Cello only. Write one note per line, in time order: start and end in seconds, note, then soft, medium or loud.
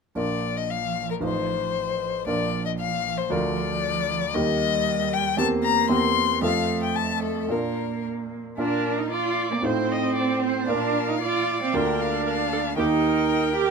0.18 2.24 F3 soft
2.27 4.32 F3 soft
4.35 5.41 G3 soft
5.40 6.42 A#3 medium
6.43 7.52 A3 soft
7.50 8.38 A#3 soft
8.58 9.00 D4 soft
8.98 9.11 D#4 medium
9.11 9.50 F4 medium
9.51 9.56 A#3 soft
9.62 10.66 C4 medium
10.68 11.10 D4 medium
11.09 11.22 D#4 medium
11.22 11.61 F4 medium
11.63 11.76 C4 medium
11.75 12.77 D4 medium
12.78 13.54 D#4 medium
13.56 13.71 G4 medium